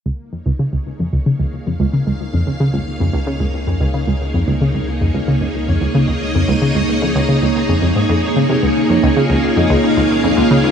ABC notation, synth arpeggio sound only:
X:1
M:4/4
L:1/16
Q:1/4=112
K:Db
V:1 name="Synth arpeggio sound" clef=bass
D,, z F,, D,, D, D,, z F,, D,, D, D,, z F,, D,, D, D,, | z F,, D,, D, D,, z F,, D,, D, D,, z F,, D,, D, D,, z | F,, D,, D, D,, z F,, D,, D, D,, z F,, D,, D, D,, z F,, | D,, D, D,, z F,, D,, D, D,, z F,, F,, A,, F,, z D, C, |
D,, z F,, D,, D, D,, z F,, D,, D, D,, z F,, D,, D, D,, |]